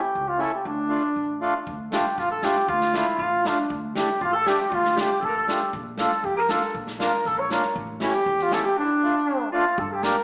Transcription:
Already playing: cornet G4
0.15 upright bass C#2
0.29 cornet F4
0.38 accordion A3 C#4 E4, cornet A4
0.54 cornet G4
0.65 upright bass D2, cornet D4
0.89 accordion A3 D4 F4
1.16 upright bass A1
1.41 accordion A3 D4 F4
1.67 upright bass D2, kick
1.91 accordion A3 D4 F4, clarinet G4, cornet G4, snare
2.18 upright bass A1, clarinet F4, cornet F4, kick, snare
2.31 clarinet A4, cornet A4
2.42 accordion A3 D4 F4, clarinet G4, cornet G4, snare
2.56 snare
2.68 upright bass D2, clarinet F4, cornet F4, kick
2.81 snare
2.93 accordion A3 D4 F4, cornet E4, snare
3.06 snare
3.19 upright bass A1, clarinet F4, cornet F4, kick
3.44 accordion A3 D4 F4, clarinet D4, cornet D4, snare
3.70 upright bass D2, kick
3.95 accordion A3 D4 E4, clarinet G4, cornet G4, snare
4.21 upright bass A1, clarinet F4, cornet F4, kick
4.32 clarinet A4, cornet A4
4.45 accordion A3 D4 G4, clarinet G4, cornet G4, snare
4.60 snare
4.70 upright bass D2, clarinet F4, kick
4.74 cornet F4
4.84 snare
4.95 accordion A3 D4 F4, clarinet G4, snare
5.00 cornet G4
5.20 upright bass A1, clarinet A4, kick
5.24 cornet A4
5.29 clarinet A#4
5.35 clarinet A4
5.48 accordion A3 D4 F4, cornet G4, snare
5.73 upright bass A#1, kick
5.98 accordion A#3 D4 F4, clarinet A4, snare
6.02 cornet A4
6.11 snare
6.23 upright bass F2, cornet G4, clarinet G4, kick
6.37 cornet A#4, clarinet A#4
6.49 accordion A#3 D4 F4, cornet A4, clarinet A4, snare
6.62 snare
6.75 upright bass A#1, kick
6.87 snare
6.99 accordion A#3 D4 F4, clarinet A#4, snare
7.04 cornet A#4
7.12 snare
7.25 upright bass A#1, clarinet A4, cornet A4, kick, snare
7.38 clarinet C#5, cornet C#5
7.50 accordion A#3 D4 F4, cornet A#4, snare
7.62 snare
7.76 upright bass A1, kick
8.00 accordion A3 C#4 E4, clarinet G4, snare
8.06 cornet G4
8.13 snare
8.26 upright bass E2, kick
8.39 cornet F4, snare
8.51 accordion A3 C#4 E4, cornet A4, snare
8.62 clarinet G4, cornet G4 A4
8.77 clarinet D4, cornet D4
8.84 clarinet E4
8.92 clarinet D4
9.02 accordion A3 D4 F4
9.52 accordion A3 D4 F4, clarinet F4, cornet F4
9.78 upright bass G2, clarinet A4, cornet A4, kick
9.90 clarinet G4, cornet A4
9.95 cornet G4
10.03 accordion A#3 D4 G4, clarinet A#4, cornet A#4, snare

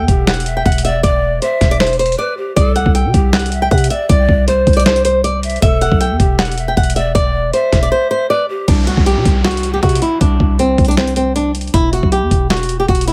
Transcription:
Already playing: nylon-string guitar G5
0.08 808-style bass E1, pan flute G4, kick, closed hi-hat
0.27 nylon-string guitar F#5, snare, clap, closed hi-hat
0.34 closed hi-hat
0.40 closed hi-hat
0.46 pan flute E5, closed hi-hat
0.57 nylon-string guitar G5
0.66 808-style bass E1, nylon-string guitar F#5, kick, closed hi-hat
0.72 closed hi-hat
0.78 closed hi-hat
0.85 pan flute D5, nylon-string guitar E5, closed hi-hat
1.03 808-style bass E1, nylon-string guitar D5, pan flute D5, kick, closed hi-hat
1.42 nylon-string guitar C5, pan flute E5, closed hi-hat
1.61 808-style bass E1, kick, snare, closed hi-hat
1.71 nylon-string guitar D5, closed hi-hat
1.80 nylon-string guitar C5, snare, clap, closed hi-hat
1.87 closed hi-hat
1.93 closed hi-hat
1.99 nylon-string guitar C5, closed hi-hat
2.06 closed hi-hat
2.12 closed hi-hat
2.18 pan flute B4, nylon-string guitar D5
2.37 pan flute G4
2.56 808-style bass C2, pan flute A4, nylon-string guitar D5, kick, closed hi-hat
2.76 nylon-string guitar F#5, closed hi-hat
2.86 808-style bass C2, kick
2.95 nylon-string guitar G5, closed hi-hat
3.05 808-style bass C3
3.14 808-style bass C2, pan flute G4, kick, closed hi-hat
3.33 nylon-string guitar F#5, snare, clap, closed hi-hat
3.39 closed hi-hat
3.46 closed hi-hat
3.52 pan flute E5, closed hi-hat
3.62 nylon-string guitar G5
3.71 808-style bass C3, nylon-string guitar F#5, kick, closed hi-hat
3.78 closed hi-hat
3.84 closed hi-hat
3.90 pan flute D5, nylon-string guitar E5, closed hi-hat
4.09 808-style bass C2, nylon-string guitar D5, pan flute D5, kick, closed hi-hat
4.29 808-style bass C2, kick
4.48 pan flute C5, nylon-string guitar C5, closed hi-hat
4.67 808-style bass C2, kick, closed hi-hat
4.73 nylon-string guitar D5, closed hi-hat
4.80 closed hi-hat
4.86 nylon-string guitar C5, snare, clap, closed hi-hat
4.96 closed hi-hat
5.05 nylon-string guitar C5, closed hi-hat
5.24 nylon-string guitar D5, closed hi-hat
5.43 pan flute E5, closed hi-hat
5.50 closed hi-hat
5.56 closed hi-hat
5.62 808-style bass E1, pan flute A4, nylon-string guitar E5, kick, closed hi-hat
5.81 nylon-string guitar F#5, closed hi-hat
5.92 808-style bass B1, kick
6.01 nylon-string guitar G5, closed hi-hat
6.11 808-style bass E2
6.20 808-style bass E1, pan flute G4, kick, closed hi-hat
6.39 nylon-string guitar F#5, snare, clap, closed hi-hat
6.45 closed hi-hat
6.52 closed hi-hat
6.58 pan flute E5, closed hi-hat
6.68 nylon-string guitar G5
6.77 808-style bass E1, nylon-string guitar F#5, kick, closed hi-hat
6.83 closed hi-hat
6.90 closed hi-hat
6.96 pan flute D5, nylon-string guitar E5, closed hi-hat
7.15 808-style bass E1, nylon-string guitar D5, pan flute D5, kick, closed hi-hat
7.53 nylon-string guitar C5, pan flute E5, closed hi-hat
7.72 808-style bass E1, kick, snare, closed hi-hat
7.83 nylon-string guitar D5, closed hi-hat
7.92 nylon-string guitar C5
8.11 nylon-string guitar C5
8.30 pan flute B4, nylon-string guitar D5
8.49 pan flute G4
8.68 808-style bass C2, nylon-string guitar D4, kick, closed hi-hat, downlifter
8.87 nylon-string guitar F#4, closed hi-hat
8.97 808-style bass C2, kick
9.06 nylon-string guitar G4, closed hi-hat
9.16 808-style bass C3
9.25 808-style bass C2, kick, closed hi-hat
9.44 nylon-string guitar F#4, snare, clap, closed hi-hat
9.51 closed hi-hat
9.57 closed hi-hat
9.63 closed hi-hat
9.74 nylon-string guitar G4
9.83 808-style bass C3, nylon-string guitar F#4, kick, closed hi-hat
9.89 closed hi-hat
9.95 closed hi-hat
10.02 nylon-string guitar E4, closed hi-hat
10.21 808-style bass C2, nylon-string guitar D4, kick, closed hi-hat
10.40 808-style bass C2, kick
10.59 nylon-string guitar C4, closed hi-hat
10.78 808-style bass C2, kick, closed hi-hat
10.85 nylon-string guitar D4, closed hi-hat
10.91 closed hi-hat
10.97 nylon-string guitar C4, snare, clap, closed hi-hat
11.07 closed hi-hat
11.16 nylon-string guitar C4, closed hi-hat
11.36 nylon-string guitar D4, closed hi-hat
11.55 closed hi-hat
11.61 closed hi-hat
11.67 closed hi-hat
11.74 808-style bass E1, nylon-string guitar E4, kick, closed hi-hat
11.93 nylon-string guitar F#4, closed hi-hat
12.03 808-style bass B1, kick
12.12 nylon-string guitar G4, closed hi-hat
12.22 808-style bass E2
12.31 808-style bass E1, kick, closed hi-hat
12.50 nylon-string guitar F#4, snare, clap, closed hi-hat
12.57 closed hi-hat
12.63 closed hi-hat
12.69 closed hi-hat
12.80 nylon-string guitar G4
12.88 808-style bass E1, nylon-string guitar F#4, kick, closed hi-hat
12.95 closed hi-hat
13.01 closed hi-hat
13.08 nylon-string guitar E4, closed hi-hat

